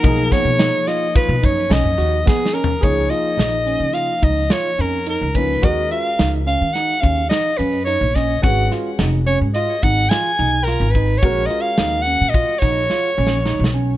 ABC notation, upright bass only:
X:1
M:5/4
L:1/16
Q:1/4=107
K:Dbmix
V:1 name="Upright bass" clef=bass
C,,2 z C,2 z4 C, G,,2 C,, G,, E,,2 z4 | D,,2 z2 B,,,3 D,2 z D,,2 z2 F,,3 D,,3 | E,,2 z2 D,,3 E,2 z E,,2 z2 G,,3 B,,,3 | A,,,2 z2 F,,,3 A,,2 z A,,,2 z2 C,,3 A,,,3 |
B,,,2 z2 E,,3 B,,2 z B,,,2 z2 B,,,3 C,,3 |]